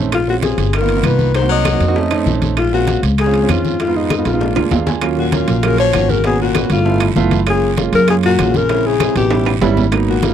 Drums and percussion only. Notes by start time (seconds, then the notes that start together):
0.12 high bongo, high conga, high timbale, long guiro, claves
0.28 high bongo, high conga
0.43 high bongo, high conga, high timbale, short guiro
0.58 high bongo, high timbale, short guiro
0.73 high bongo, high conga, high timbale, long guiro, claves
0.88 high conga, high timbale
1.03 high bongo, low bongo, high conga, high timbale, short guiro, claves
1.19 high bongo, high conga, short guiro
1.34 high bongo, high conga, high timbale, long guiro
1.50 high bongo, high conga
1.65 high bongo, high conga, high timbale, short guiro, claves
1.80 high bongo, high conga, high timbale, short guiro
1.96 high bongo, high conga, long guiro
2.11 high conga, high timbale, claves
2.26 high bongo, low bongo, high conga, short guiro
2.42 high bongo, high conga, high timbale, short guiro
2.57 high bongo, high conga, high timbale, long guiro, claves
2.72 high bongo, high conga
2.87 high bongo, high conga, high timbale, short guiro
3.03 high bongo, high timbale, short guiro
3.18 high bongo, high conga, high timbale, long guiro, claves
3.34 high conga, high timbale
3.49 high bongo, low bongo, high conga, high timbale, low timbale, short guiro, claves
3.65 high bongo, high conga, short guiro
3.80 high bongo, high conga, high timbale, long guiro
3.95 high bongo, high conga
4.10 high bongo, high conga, high timbale, short guiro, claves
4.25 high bongo, high conga, high timbale, short guiro
4.41 high bongo, high conga, long guiro
4.56 low bongo, high conga, high timbale, claves
4.71 low bongo, high conga, low timbale, short guiro
4.87 low bongo, high conga, low timbale, short guiro
5.01 high bongo, high conga, high timbale, long guiro, claves
5.17 high bongo, high conga
5.32 high bongo, high conga, high timbale, short guiro
5.48 high bongo, high timbale, short guiro
5.63 high bongo, high conga, high timbale, long guiro, claves
5.78 high conga, high timbale
5.93 high bongo, low bongo, high conga, high timbale, short guiro, claves
6.09 high bongo, high conga, short guiro
6.24 high bongo, high conga, high timbale, long guiro
6.39 high bongo, high conga
6.55 high bongo, high conga, high timbale, short guiro, claves
6.70 high bongo, high conga, high timbale, short guiro
6.86 high bongo, high conga, long guiro
7.00 high conga, high timbale, claves
7.16 high bongo, low bongo, high conga, short guiro
7.31 high bongo, high conga, high timbale, short guiro
7.46 high bongo, high conga, high timbale, long guiro, claves
7.62 high bongo, high conga
7.77 high bongo, high conga, high timbale, short guiro
7.93 high bongo, high timbale, short guiro
8.08 high bongo, high conga, high timbale, long guiro, claves
8.23 high conga, high timbale
8.39 high bongo, low bongo, high conga, high timbale, short guiro, claves
8.54 high bongo, high conga, short guiro
8.69 high bongo, high conga, high timbale, long guiro
8.85 high bongo, high conga
9.00 high bongo, high conga, high timbale, short guiro, claves
9.16 high bongo, high conga, high timbale, short guiro
9.30 high bongo, high conga, high timbale, long guiro
9.46 high conga, high timbale, claves
9.62 high bongo, low bongo, high conga, low timbale, short guiro
9.77 high bongo, high conga, low timbale, short guiro
9.92 high bongo, high conga, high timbale, long guiro, claves
10.08 high bongo, high conga
10.23 high bongo, high conga, high timbale, short guiro